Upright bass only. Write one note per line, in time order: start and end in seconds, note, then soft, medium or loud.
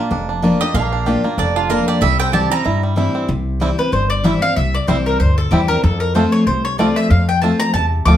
0.11 0.52 F1 medium
0.74 1.15 A#1 loud
1.38 1.79 F1 medium
2.02 2.43 C2 loud
2.66 3.06 G2 medium
3.29 3.70 C2 loud
3.93 4.33 G1 medium
4.57 4.77 C2 medium
4.88 5.15 C2 medium
5.20 5.47 D2 medium
5.52 5.79 E2 medium
5.84 6.24 F2 loud
6.47 6.88 C2 medium
7.10 7.51 F2 loud
7.74 8.01 E2 medium
8.06 8.17 D2 medium